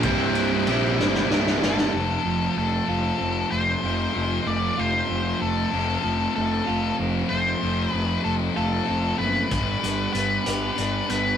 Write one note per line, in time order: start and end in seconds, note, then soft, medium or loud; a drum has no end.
0.03 0.64 C1 medium
0.03 0.67 C2 medium
0.03 0.68 G2 medium
0.03 0.37 C3 medium
0.03 0.37 G3 medium
0.03 0.36 A#3 loud
0.03 1.27 C4 medium
0.03 0.35 E4 medium
0.03 1.26 C5 medium
0.03 kick loud
0.03 ride medium
0.35 0.67 C3 medium
0.35 0.68 G3 medium
0.35 0.69 A#3 medium
0.35 0.69 E4 medium
0.35 ride medium
0.67 0.97 A#1 medium
0.67 1.01 C3 medium
0.67 1.00 G3 medium
0.67 1.00 A#3 medium
0.67 0.99 E4 medium
0.67 ride medium
0.98 1.29 G1 medium
0.98 1.31 G3 medium
0.98 1.31 A#3 medium
0.98 1.32 E4 medium
0.98 snare medium
1.02 1.30 C3 medium
1.15 snare medium
1.30 1.60 C1 medium
1.30 1.64 C3 medium
1.30 1.64 G3 medium
1.30 1.63 A#3 medium
1.30 1.62 E4 medium
1.30 snare medium
1.47 snare medium
1.61 1.92 G1 medium
1.61 1.94 C3 medium
1.61 1.94 G3 medium
1.61 1.93 A#3 medium
1.61 1.92 E4 medium
1.61 2.57 A4 medium
1.61 snare medium
1.78 snare medium
1.93 2.16 F1 medium
1.93 3.82 F2 medium
1.93 3.83 F2 medium
1.93 3.82 C3 medium
1.93 3.86 F3 medium
2.25 2.48 F1 medium
2.25 4.15 F3 medium
2.57 2.79 F1 medium
2.57 3.51 A3 medium
2.57 3.51 A4 medium
2.88 3.11 F1 medium
2.88 4.77 F4 medium
3.19 3.43 F1 medium
3.19 5.09 C4 medium
3.51 3.74 F1 medium
3.51 4.46 A3 medium
3.51 4.50 C5 medium
3.83 4.06 F1 medium
3.83 5.72 F2 medium
3.83 5.71 F2 medium
3.83 5.72 C3 medium
3.83 5.74 F3 medium
4.15 4.38 F1 medium
4.15 6.03 F3 medium
4.46 4.69 F1 medium
4.46 5.41 A3 medium
4.46 4.80 D5 medium
4.78 5.01 F1 medium
4.78 6.67 F4 medium
4.78 5.41 C5 medium
5.09 5.32 F1 medium
5.09 6.99 C4 medium
5.41 5.64 F1 medium
5.41 6.35 A3 medium
5.41 6.33 A4 medium
5.72 5.96 F1 medium
5.72 7.60 F2 medium
5.72 7.31 F2 medium
5.72 7.61 C3 medium
5.72 7.62 F3 medium
6.04 6.27 F1 medium
6.04 7.63 F3 medium
6.36 6.60 F1 medium
6.36 7.29 A3 medium
6.36 6.95 A4 medium
6.67 6.91 F1 medium
6.67 8.26 F4 medium
6.99 7.22 F1 medium
6.99 8.58 C4 medium
7.29 7.54 F1 medium
7.29 8.24 A3 medium
7.29 7.91 C5 medium
7.62 7.85 F1 medium
7.62 9.50 F2 medium
7.62 9.21 F2 medium
7.62 9.51 C3 medium
7.62 9.52 F3 medium
7.91 8.16 F1 medium
7.91 9.52 F3 medium
7.91 8.21 B4 medium
8.24 8.48 F1 medium
8.24 9.17 A3 medium
8.24 8.33 A4 medium
8.56 8.80 F1 medium
8.56 9.52 F4 medium
8.56 9.18 A4 medium
8.88 9.12 F1 medium
8.88 9.52 C4 medium
9.19 9.43 F#1 medium
9.19 9.52 A3 medium
9.19 10.12 B4 medium
9.51 9.74 G1 medium
9.51 11.10 G2 medium
9.51 11.37 G2 medium
9.51 11.37 D3 medium
9.51 11.37 G3 medium
9.51 kick loud
9.51 closed hi-hat medium
9.83 10.06 G1 medium
9.83 11.37 G3 medium
9.83 closed hi-hat medium
10.13 10.37 G1 medium
10.13 11.08 B3 medium
10.13 11.09 B4 medium
10.13 closed hi-hat medium
10.46 10.69 G1 medium
10.46 11.37 G4 medium
10.46 closed hi-hat medium
10.78 11.01 G1 medium
10.78 11.37 D4 medium
10.78 closed hi-hat soft
11.09 11.33 G1 medium
11.09 11.37 B3 medium
11.09 11.37 B4 medium
11.09 closed hi-hat medium